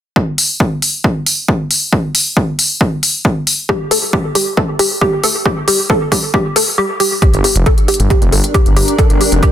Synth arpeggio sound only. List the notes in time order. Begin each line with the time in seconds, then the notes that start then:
3.69 G4
3.91 A4
4.13 G4
4.35 G4
4.57 A4
4.79 G4
5.01 G4
5.24 A4
5.46 G4
5.68 G4
5.90 A4
6.12 G4
6.34 G4
6.56 A4
6.78 G4
7.00 G4
7.22 G4
7.44 G4
7.66 A4
7.88 G4
8.10 G4
8.32 A4
8.54 G4
8.76 G4
8.99 A4
9.21 G4
9.43 G4